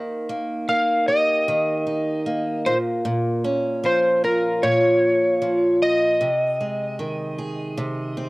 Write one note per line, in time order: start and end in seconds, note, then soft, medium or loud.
0.00 1.47 D#3 medium
0.00 0.29 A#3 medium
0.00 1.85 D#4 medium
0.00 1.07 G4 medium
0.29 0.68 A#3 medium
0.69 2.26 A#3 medium
0.69 1.08 F5 medium
1.08 2.74 G4 medium
1.08 2.62 D#5 medium
1.48 2.74 D#3 medium
1.87 2.73 D#4 medium
2.26 3.44 A#3 medium
2.66 3.04 A#2 medium
2.66 2.77 C5 medium
3.05 4.62 A#2 medium
3.44 6.28 C#4 medium
3.84 5.40 F3 medium
3.84 4.22 C5 medium
4.24 6.29 F4 medium
4.24 4.64 A#4 medium
4.63 6.20 A#2 medium
4.63 5.82 C#5 medium
5.42 6.28 F3 medium
5.82 8.29 D#5 medium
6.21 7.76 C3 medium
6.61 8.29 G#3 medium
6.99 8.29 D#3 medium
7.38 8.29 G#4 medium
7.77 8.29 C3 medium
8.17 8.29 C4 medium